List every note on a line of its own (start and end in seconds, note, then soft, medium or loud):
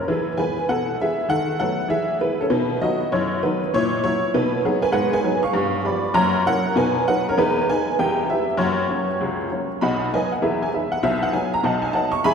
0.08 0.34 E3 medium
0.08 0.37 E4 medium
0.08 0.27 G#4 medium
0.08 0.34 B4 medium
0.37 0.54 E3 soft
0.37 0.55 G#3 soft
0.37 0.55 B3 soft
0.37 0.67 B4 medium
0.37 0.64 G#5 medium
0.69 0.95 B2 medium
0.69 0.98 A4 medium
0.69 0.95 F#5 medium
1.01 1.17 E3 soft
1.01 1.17 G#3 soft
1.01 1.18 B3 soft
1.01 1.29 G#4 medium
1.01 1.26 E5 medium
1.29 1.55 D#3 medium
1.29 1.58 A4 medium
1.29 1.55 F#5 loud
1.60 1.77 F#3 soft
1.60 1.77 A3 soft
1.60 1.77 B3 soft
1.60 1.89 A4 medium
1.60 1.85 F#5 medium
1.88 2.15 E3 medium
1.88 2.18 G#4 medium
1.88 2.16 E5 medium
2.21 2.38 G#3 soft
2.21 2.38 B3 soft
2.21 2.40 E4 medium
2.21 2.38 B4 medium
2.41 2.51 C#4 medium
2.41 2.50 A4 medium
2.50 2.76 B2 medium
2.50 2.80 D#4 medium
2.50 2.76 B4 medium
2.81 2.98 D#3 soft
2.81 2.98 F#3 soft
2.81 2.99 B3 medium
2.81 3.10 F#4 medium
2.81 3.07 D#5 medium
3.12 3.38 F#2 medium
3.12 3.41 E4 medium
3.12 3.38 C#5 medium
3.43 3.59 D#3 soft
3.43 3.59 F#3 soft
3.43 3.60 B3 soft
3.43 3.72 D#4 soft
3.43 3.68 B4 medium
3.74 3.99 A#2 loud
3.74 4.02 E4 medium
3.74 3.99 C#5 loud
4.04 4.20 F#3 medium
4.04 4.33 E4 medium
4.04 4.29 C#5 loud
4.34 4.60 B2 medium
4.34 4.62 D#4 medium
4.34 4.60 B4 medium
4.65 4.81 F#3 soft
4.65 4.83 B3 medium
4.65 4.82 D#4 soft
4.65 4.81 G#4 medium
4.82 4.92 B4 medium
4.82 4.92 G#5 medium
4.92 5.19 G#2 medium
4.92 5.10 B3 medium
4.92 5.12 B4 medium
4.92 5.10 F#5 medium
5.13 5.42 B4 medium
5.13 5.39 G#5 loud
5.24 5.41 F#3 medium
5.24 5.41 B3 medium
5.24 5.41 D#4 medium
5.43 5.82 F5 medium
5.43 5.78 C#6 medium
5.53 5.80 G2 medium
5.53 5.72 B3 medium
5.85 6.01 F3 soft
5.85 6.02 B3 medium
5.85 6.02 G4 soft
5.85 6.14 D5 medium
5.85 6.11 B5 medium
6.14 6.40 F#2 loud
6.14 6.33 A#3 medium
6.14 6.44 C#5 medium
6.14 6.41 A#5 loud
6.46 6.63 F#3 medium
6.46 6.63 C#4 soft
6.46 6.63 E4 medium
6.46 6.75 A#4 medium
6.46 6.72 F#5 loud
6.76 7.02 B2 medium
6.76 6.94 D#4 medium
6.76 7.05 B4 medium
6.76 7.02 G#5 medium
7.07 7.24 F#3 soft
7.07 7.25 B3 soft
7.07 7.24 D#4 medium
7.07 7.27 B4 medium
7.07 7.24 F#5 medium
7.29 7.38 C#4 medium
7.29 7.37 A#4 medium
7.37 7.63 E2 medium
7.37 7.56 G#3 medium
7.37 7.66 D#4 medium
7.37 7.63 B4 medium
7.69 7.85 G#3 medium
7.69 7.86 B3 soft
7.69 7.86 D#4 medium
7.69 7.97 B4 medium
7.69 7.94 G#5 loud
7.99 8.24 E2 medium
7.99 8.17 G3 medium
7.99 8.27 B4 medium
7.99 8.24 G5 medium
8.29 8.46 G3 soft
8.29 8.46 B3 soft
8.29 8.46 E4 soft
8.29 8.58 G4 medium
8.29 8.55 E5 medium
8.57 8.84 F#2 medium
8.57 8.76 A#3 soft
8.57 9.46 F#4 medium
8.57 9.35 C#5 medium
8.89 9.05 F#3 soft
8.89 9.06 A#3 soft
8.89 9.06 C#4 medium
9.21 9.46 C#2 medium
9.51 9.67 F#3 soft
9.51 9.67 A#3 soft
9.51 9.68 C#4 soft
9.81 10.07 B1 medium
9.81 10.07 B2 medium
9.81 10.10 D#5 medium
9.81 10.10 F#5 medium
9.81 10.06 B5 medium
10.14 10.29 F#3 soft
10.14 10.30 B3 soft
10.14 10.29 D#4 soft
10.14 10.31 B4 medium
10.14 10.31 D#5 medium
10.14 10.29 G#5 medium
10.32 10.40 F#5 soft
10.42 10.67 E2 medium
10.42 10.67 E3 medium
10.42 10.60 G#4 medium
10.42 10.60 B4 medium
10.42 10.58 E5 medium
10.63 10.71 G#5 medium
10.73 10.89 G#3 soft
10.73 10.90 B3 soft
10.73 10.90 D#4 soft
10.73 10.90 E5 medium
10.92 11.00 F#5 medium
11.03 11.28 B1 medium
11.03 11.28 B2 medium
11.03 11.19 E5 medium
11.23 11.31 F#5 medium
11.33 11.49 F#3 soft
11.33 11.49 B3 medium
11.33 11.49 D#4 medium
11.33 11.49 G#5 medium
11.54 11.62 A#5 medium
11.63 11.89 B1 medium
11.63 11.89 B2 medium
11.63 11.82 D#5 medium
11.63 11.82 F#5 medium
11.63 11.80 A5 medium
11.82 11.91 G#5 medium
11.93 12.10 F#3 soft
11.93 12.10 B3 soft
11.93 12.10 D#4 medium
11.93 12.12 D#5 medium
11.93 12.12 F#5 medium
11.93 12.10 A5 medium
12.12 12.21 C#6 medium
12.24 12.34 E2 medium
12.24 12.34 G#3 medium
12.24 12.34 E5 medium
12.24 12.34 G#5 medium
12.24 12.34 B5 loud